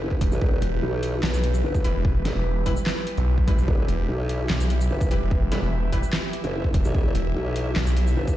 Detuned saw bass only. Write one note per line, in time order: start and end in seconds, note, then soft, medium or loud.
0.21 0.30 E1 medium
0.62 0.81 E1 loud
1.23 1.32 B1 medium
1.34 1.62 B1 loud
1.84 1.93 E1 loud
1.95 2.24 E1 loud
2.36 2.75 E1 loud
3.17 3.57 B1 loud
3.58 3.66 B1 loud
3.88 4.07 E1 loud
4.50 4.59 B1 medium
4.60 4.89 B1 loud
5.11 5.20 E1 loud
5.22 5.50 E1 loud
5.62 6.01 E1 loud
6.74 6.83 E1 loud
7.15 7.34 E1 loud
7.76 7.85 B1 loud
7.87 8.15 B1 loud